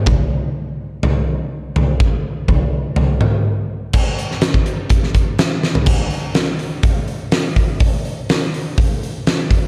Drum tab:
CC |----------------|----------------|x---------------|x---------------|
HH |----------------|----------------|--x-x-x-x-x-x---|--o-o-o-o-o-o-o-|
SD |----------------|----------------|---oo----o--o-o-|----o-------o---|
T2 |----------------|----------o-----|----------------|----------------|
FT |o-------o-----o-|----o---o-------|---------------o|----------------|
BD |o---------------|o---o-----------|o----o--o-o-----|o-------o-----o-|

CC |----------------|
HH |o-o-o-o-o-o-o-o-|
SD |----o-------o---|
T2 |----------------|
FT |----------------|
BD |o-------o-----o-|